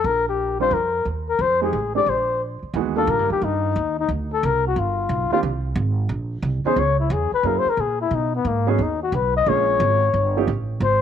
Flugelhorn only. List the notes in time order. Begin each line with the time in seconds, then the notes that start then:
0.06 A#4
0.29 G4
0.61 C5
0.74 A#4
1.29 A#4
1.42 C5
1.63 G#4
1.96 D5
2.10 C5
2.97 A4
3.10 A#4
3.32 G4
3.44 D#4
4.00 D#4
4.33 A4
4.45 A#4
4.67 F#4
4.79 F4
5.33 F4
6.67 C5
6.79 C#5
7.00 E4
7.12 G#4
7.34 B4
7.47 A#4
7.59 C5
7.69 A#4
7.81 G#4
8.01 E4
8.15 D#4
8.35 B3
8.47 A#3
8.70 C#4
8.82 D#4
9.03 F#4
9.15 B4
9.37 D#5
9.49 C#5
10.83 C5